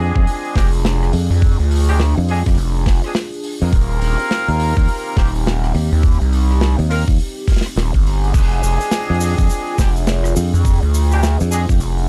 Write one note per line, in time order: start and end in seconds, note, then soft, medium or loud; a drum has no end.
0.00 0.13 F2 loud
0.00 0.53 G#3 medium
0.00 0.53 C4 medium
0.00 0.53 D4 medium
0.00 3.69 D4 medium
0.00 3.69 F4 medium
0.00 0.53 G#4 loud
0.00 3.69 G#4 medium
0.16 0.25 F2 medium
0.16 kick loud
0.27 open hi-hat medium
0.45 open hi-hat soft
0.55 1.11 F1 loud
0.55 0.66 G#3 medium
0.55 0.66 C4 medium
0.55 0.66 D4 medium
0.55 0.66 G4 loud
0.55 kick loud
0.55 snare medium
0.55 open hi-hat medium
0.73 open hi-hat medium
0.85 snare loud
0.85 open hi-hat medium
1.03 cross-stick soft
1.03 open hi-hat soft
1.13 1.28 F2 medium
1.13 open hi-hat medium
1.30 1.57 F2 loud
1.30 open hi-hat soft
1.42 kick loud
1.42 open hi-hat medium
1.60 2.15 D2 loud
1.60 open hi-hat soft
1.71 open hi-hat medium
1.76 open hi-hat medium
1.80 open hi-hat medium
1.84 open hi-hat medium
1.88 1.99 G#3 medium
1.88 1.99 C4 medium
1.88 1.99 D4 medium
1.88 1.99 G4 loud
1.88 cross-stick soft
1.88 open hi-hat medium
1.91 open hi-hat soft
1.94 open hi-hat soft
1.97 open hi-hat soft
1.99 snare loud
1.99 open hi-hat medium
2.17 2.44 F2 loud
2.17 open hi-hat soft
2.28 2.39 G#3 medium
2.28 2.39 C4 medium
2.28 2.39 D4 medium
2.28 2.39 G#4 loud
2.28 cross-stick soft
2.28 open hi-hat medium
2.35 cross-stick soft
2.39 cross-stick soft
2.46 2.56 F2 loud
2.46 kick loud
2.46 cross-stick soft
2.46 open hi-hat medium
2.54 3.01 F1 medium
2.54 cross-stick soft
2.54 open hi-hat medium
2.75 open hi-hat soft
2.86 kick loud
2.86 snare medium
2.86 open hi-hat medium
3.04 3.11 G#3 medium
3.04 3.11 C4 medium
3.04 3.11 D4 medium
3.04 3.11 G#4 medium
3.04 cross-stick soft
3.04 open hi-hat soft
3.15 snare loud
3.15 open hi-hat medium
3.34 open hi-hat soft
3.44 open hi-hat medium
3.62 3.71 F2 loud
3.62 5.15 A#3 medium
3.62 5.14 C4 medium
3.62 5.14 F4 medium
3.62 5.14 A#4 loud
3.62 open hi-hat soft
3.73 4.00 D#1 loud
3.73 8.30 C4 medium
3.73 8.30 D#4 medium
3.73 8.30 G4 medium
3.73 kick loud
3.73 open hi-hat medium
3.91 open hi-hat soft
4.01 4.16 D#1 loud
4.01 open hi-hat medium
4.19 open hi-hat medium
4.31 snare loud
4.31 open hi-hat medium
4.48 4.74 D#2 loud
4.48 open hi-hat soft
4.60 open hi-hat medium
4.77 4.86 D#2 loud
4.77 kick loud
4.77 open hi-hat soft
4.83 open hi-hat soft
4.88 open hi-hat medium
4.97 open hi-hat soft
5.06 open hi-hat soft
5.17 5.73 D#1 loud
5.17 5.28 A#3 medium
5.17 5.28 C4 medium
5.17 5.28 F4 medium
5.17 5.28 G4 loud
5.17 kick loud
5.17 snare medium
5.17 open hi-hat medium
5.36 open hi-hat medium
5.46 snare loud
5.46 open hi-hat medium
5.64 cross-stick medium
5.64 open hi-hat soft
5.74 5.89 D#2 medium
5.74 open hi-hat medium
5.92 6.18 D#2 loud
5.92 open hi-hat medium
6.03 kick loud
6.03 open hi-hat medium
6.21 6.76 C2 loud
6.21 open hi-hat soft
6.33 open hi-hat loud
6.51 cross-stick soft
6.61 snare loud
6.61 open hi-hat medium
6.79 7.05 D#2 loud
6.79 open hi-hat soft
6.90 7.01 A#3 medium
6.90 7.01 C4 medium
6.90 7.01 F4 medium
6.90 7.01 A#4 loud
6.90 cross-stick soft
6.90 open hi-hat medium
7.08 7.17 D#2 loud
7.08 kick loud
7.20 open hi-hat medium
7.38 open hi-hat soft
7.43 open hi-hat soft
7.48 kick loud
7.48 snare soft
7.48 open hi-hat loud
7.48 open hi-hat soft
7.52 snare soft
7.57 snare soft
7.57 open hi-hat soft
7.61 snare medium
7.66 cross-stick soft
7.66 open hi-hat medium
7.76 7.91 D#1 loud
7.76 snare loud
7.76 open hi-hat medium
7.94 8.32 G1 loud
7.94 kick medium
7.94 open hi-hat soft
8.06 open hi-hat medium
8.23 9.76 G#3 medium
8.23 9.76 C4 medium
8.23 9.76 D4 medium
8.23 9.76 G#4 loud
8.23 open hi-hat medium
8.34 8.61 F1 loud
8.34 12.09 D4 medium
8.34 12.09 F4 medium
8.34 12.09 G#4 medium
8.34 kick loud
8.34 open hi-hat medium
8.34 crash medium
8.34 shaker soft
8.52 open hi-hat soft
8.63 8.78 F1 loud
8.63 open hi-hat medium
8.63 shaker medium
8.81 open hi-hat medium
8.81 shaker soft
8.91 snare loud
8.91 open hi-hat medium
8.91 shaker medium
9.10 9.36 F2 medium
9.14 open hi-hat soft
9.20 open hi-hat medium
9.20 shaker medium
9.37 9.48 F2 medium
9.37 kick loud
9.37 open hi-hat soft
9.37 shaker soft
9.50 open hi-hat medium
9.50 shaker medium
9.67 open hi-hat soft
9.78 10.34 F1 medium
9.78 9.89 G#3 medium
9.78 9.89 C4 medium
9.78 9.89 D4 medium
9.78 9.89 G4 loud
9.78 kick loud
9.78 snare medium
9.78 open hi-hat medium
9.78 shaker medium
9.96 open hi-hat medium
9.96 shaker soft
10.07 snare loud
10.07 open hi-hat medium
10.07 shaker medium
10.24 cross-stick medium
10.24 open hi-hat soft
10.24 shaker soft
10.36 10.51 F2 loud
10.36 open hi-hat medium
10.36 shaker medium
10.54 10.80 F2 loud
10.54 open hi-hat soft
10.54 shaker soft
10.65 kick loud
10.65 open hi-hat medium
10.65 shaker medium
10.82 11.38 D2 loud
10.82 open hi-hat soft
10.94 open hi-hat medium
10.94 shaker medium
11.11 11.22 G#3 medium
11.11 11.22 C4 medium
11.11 11.22 D4 medium
11.11 11.22 G4 loud
11.11 cross-stick soft
11.11 open hi-hat soft
11.11 shaker soft
11.23 snare loud
11.23 open hi-hat medium
11.23 shaker medium
11.40 11.67 F2 loud
11.40 open hi-hat soft
11.40 shaker soft
11.51 11.62 G#3 medium
11.51 11.62 C4 medium
11.51 11.62 D4 medium
11.51 11.62 G#4 loud
11.51 cross-stick soft
11.51 open hi-hat medium
11.51 shaker loud
11.69 11.79 F2 loud
11.69 kick loud
11.69 open hi-hat soft
11.69 shaker soft
11.80 12.09 F1 medium
11.80 open hi-hat medium
11.80 shaker soft
11.98 open hi-hat soft